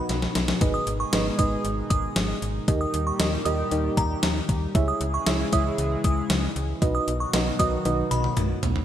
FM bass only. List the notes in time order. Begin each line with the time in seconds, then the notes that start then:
0.09 B1
0.35 B1
0.61 G#1
0.87 G#1
1.13 G#1
1.39 G#1
1.65 G#1
1.91 G#1
2.16 G#1
2.42 G#1
2.68 D#2
2.94 D#2
3.20 D#2
3.46 D#2
3.72 D#2
3.97 D#2
4.23 D#2
4.49 D#2
4.75 C#2
5.01 C#2
5.27 C#2
5.53 C#2
5.78 C#2
6.04 C#2
6.30 C#2
6.56 C#2
6.82 B1
7.08 B1
7.34 B1
7.60 B1
7.85 B1
8.11 B1
8.37 B1
8.63 B1